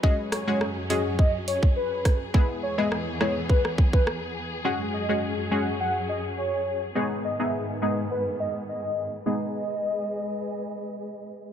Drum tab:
HH |--x---x---x---x-|----------------|----------------|----------------|
SD |--r-r---------r-|----r-r--r--r---|----------------|----------------|
BD |o-------o--o--o-|o-------o-oo----|----------------|----------------|

HH |----------------|
SD |----------------|
BD |----------------|